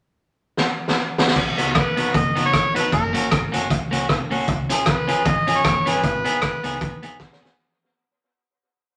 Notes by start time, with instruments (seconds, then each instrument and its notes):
0.57 snare
0.88 snare
1.18 snare
1.28 snare
1.36 upright bass B1, kick, crash
1.57 upright bass C#2, clean electric guitar B3 D#4 F#4, closed hi-hat
1.75 upright bass D#2, harmonica B4, kick, cross-stick, closed hi-hat
1.97 upright bass B1, clean electric guitar B3 D#4 F#4, closed hi-hat
2.14 upright bass F#1, harmonica D#5, muted clean electric guitar stroke, kick, closed hi-hat
2.36 clean electric guitar B3 D#4 F#4, closed hi-hat
2.45 harmonica C#5
2.53 upright bass A#1, kick, cross-stick, closed hi-hat
2.75 upright bass F1, clean electric guitar B3 D#4 F#4, harmonica B4, closed hi-hat
2.92 upright bass F#1, harmonica A#4, kick, closed hi-hat
3.13 upright bass A#1, clean electric guitar A#3 C#4 F#4, closed hi-hat
3.31 upright bass G#1, kick, cross-stick, closed hi-hat
3.52 upright bass F#1, clean electric guitar A#3 C#4 F#4, closed hi-hat
3.70 upright bass C#2, kick, closed hi-hat
3.91 clean electric guitar A#3 C#4 F#4, closed hi-hat
4.09 upright bass F1, kick, cross-stick, closed hi-hat
4.30 upright bass C2, clean electric guitar A#3 C#4 F#4, open hi-hat
4.48 upright bass C#2, kick, closed hi-hat
4.69 upright bass B1, clean electric guitar C#4 F4 G#4, closed hi-hat
4.86 upright bass C#2, harmonica B4, kick, cross-stick, closed hi-hat
5.08 upright bass A#1, clean electric guitar C#4 F4 G#4, closed hi-hat
5.25 upright bass G#1, harmonica D#5, muted clean electric guitar stroke, kick, closed hi-hat
5.47 clean electric guitar C#4 F4 G#4, closed hi-hat
5.58 harmonica C#5
5.65 upright bass F#1, kick, cross-stick, closed hi-hat
5.86 upright bass G1, clean electric guitar C#4 F4 G#4, harmonica B4, closed hi-hat
6.03 upright bass G#1, kick, closed hi-hat
6.25 upright bass A#1, clean electric guitar B3 D#4 G#4, closed hi-hat
6.42 upright bass B1, kick, cross-stick, closed hi-hat
6.63 upright bass C#2, clean electric guitar B3 D#4 G#4, closed hi-hat
6.81 upright bass D#2, kick, closed hi-hat
7.03 clean electric guitar B3 D#4 G#4, closed hi-hat
7.20 kick, snare
7.33 snare
7.41 upright bass G1, clean electric guitar B3 D#4 G#4
7.45 snare